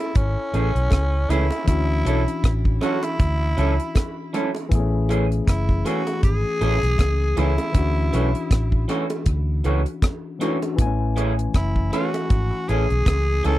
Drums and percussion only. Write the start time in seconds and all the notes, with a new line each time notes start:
0.15 kick, closed hi-hat
0.54 closed hi-hat, high bongo
0.76 closed hi-hat
0.91 kick, cross-stick, closed hi-hat, high bongo
1.30 closed hi-hat, low bongo
1.51 closed hi-hat, high bongo
1.68 kick, closed hi-hat
2.05 closed hi-hat, high bongo
2.28 closed hi-hat
2.44 kick, cross-stick, closed hi-hat
2.65 kick
2.81 closed hi-hat, high bongo
3.03 closed hi-hat, high bongo
3.19 kick, closed hi-hat
3.58 closed hi-hat, high bongo
3.80 closed hi-hat
3.95 kick, cross-stick, closed hi-hat, high bongo
4.34 closed hi-hat, low bongo
4.55 closed hi-hat, high bongo
4.72 kick, closed hi-hat
5.09 closed hi-hat, high bongo
5.32 closed hi-hat
5.48 kick, cross-stick, closed hi-hat
5.69 kick
5.86 closed hi-hat, high bongo
6.07 closed hi-hat, high bongo
6.23 kick, closed hi-hat
6.61 closed hi-hat, high bongo
6.83 closed hi-hat
6.98 kick, cross-stick, closed hi-hat, high bongo
7.37 closed hi-hat, low bongo
7.58 closed hi-hat, high bongo
7.74 kick, closed hi-hat
8.13 closed hi-hat, high bongo
8.35 closed hi-hat
8.51 kick, cross-stick, closed hi-hat
8.72 kick
8.89 closed hi-hat, high bongo
9.10 closed hi-hat, high bongo
9.26 kick, closed hi-hat
9.64 closed hi-hat, high bongo
9.86 closed hi-hat
10.02 kick, cross-stick, closed hi-hat, high bongo
10.41 closed hi-hat, low bongo
10.62 closed hi-hat, high bongo
10.78 kick, closed hi-hat
11.16 closed hi-hat, high bongo
11.39 closed hi-hat
11.54 kick, cross-stick, closed hi-hat
11.76 kick
11.93 closed hi-hat, high bongo
12.14 closed hi-hat, high bongo
12.30 kick, closed hi-hat
12.69 closed hi-hat, high bongo
12.90 closed hi-hat
13.06 kick, cross-stick, closed hi-hat, high bongo
13.44 closed hi-hat, low bongo